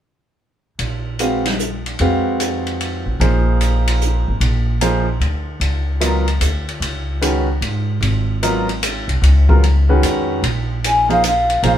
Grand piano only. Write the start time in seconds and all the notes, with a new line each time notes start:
1.20 G#3 C4 F#4 B4 F5
2.00 G#3 C4 F#4 B4 F5
3.20 F3 A#3 D#4 G#4 C5
4.81 F3 A#3 D#4 G#4 C5
6.00 F#3 B3 F4 A#4 D#5
7.21 D#3 G#3 C#4 F#4 B4
8.43 F#3 B3 F4 A#4 D#5
9.49 C#3 F#3 B3 F4 A#4
9.89 D#3 G#3 C#4 F#4 B4
11.09 F3 A#3 D#4 G#4 C5
11.63 F3 A#3 D#4 G#4 C5